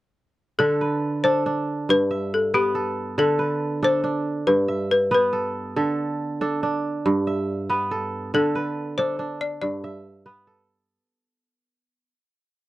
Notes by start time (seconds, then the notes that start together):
0.59 D3 A4
0.81 B4
1.24 D4 A4 C5
1.46 D4
1.89 G2 B4
2.11 E5
2.34 A4
2.54 B3 G4 B4
2.75 A4
3.18 D3 A4
3.39 B4
3.83 D4 A4 C5
4.04 D4
4.47 G2 B4
4.68 E5
4.91 B4
5.11 B3 B4
5.33 A4
5.76 D3 A4
6.41 D4 A4
6.63 D4
7.06 G2
7.27 E5
7.70 B3 B4
7.91 A4
8.34 D3 A4
8.55 B4
8.98 D4 A4 C5
9.19 D4
9.41 D5
9.62 G2 D5
9.84 E5
10.26 B3 B4
10.47 A4